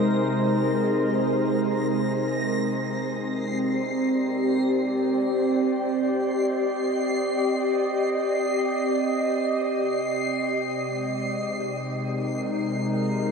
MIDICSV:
0, 0, Header, 1, 3, 480
1, 0, Start_track
1, 0, Key_signature, -3, "minor"
1, 0, Tempo, 500000
1, 12782, End_track
2, 0, Start_track
2, 0, Title_t, "Synth texture"
2, 0, Program_c, 0, 99
2, 0, Note_on_c, 0, 94, 72
2, 2392, Note_on_c, 0, 96, 81
2, 2421, Note_off_c, 0, 94, 0
2, 12782, Note_off_c, 0, 96, 0
2, 12782, End_track
3, 0, Start_track
3, 0, Title_t, "Ambient pad"
3, 0, Program_c, 1, 92
3, 0, Note_on_c, 1, 48, 78
3, 0, Note_on_c, 1, 56, 77
3, 0, Note_on_c, 1, 63, 74
3, 0, Note_on_c, 1, 70, 78
3, 0, Note_on_c, 1, 72, 73
3, 2397, Note_off_c, 1, 56, 0
3, 2402, Note_off_c, 1, 48, 0
3, 2408, Note_on_c, 1, 60, 69
3, 2704, Note_on_c, 1, 67, 85
3, 3187, Note_on_c, 1, 74, 89
3, 3445, Note_off_c, 1, 63, 0
3, 4425, Note_off_c, 1, 70, 0
3, 4621, Note_off_c, 1, 72, 0
3, 5509, Note_on_c, 1, 75, 82
3, 9315, Note_on_c, 1, 48, 76
3, 10177, Note_on_c, 1, 56, 81
3, 10950, Note_on_c, 1, 63, 69
3, 11079, Note_off_c, 1, 60, 0
3, 11397, Note_on_c, 1, 70, 86
3, 11684, Note_off_c, 1, 67, 0
3, 12002, Note_on_c, 1, 72, 67
3, 12077, Note_off_c, 1, 75, 0
3, 12078, Note_off_c, 1, 74, 0
3, 12782, Note_off_c, 1, 48, 0
3, 12782, Note_off_c, 1, 56, 0
3, 12782, Note_off_c, 1, 63, 0
3, 12782, Note_off_c, 1, 70, 0
3, 12782, Note_off_c, 1, 72, 0
3, 12782, End_track
0, 0, End_of_file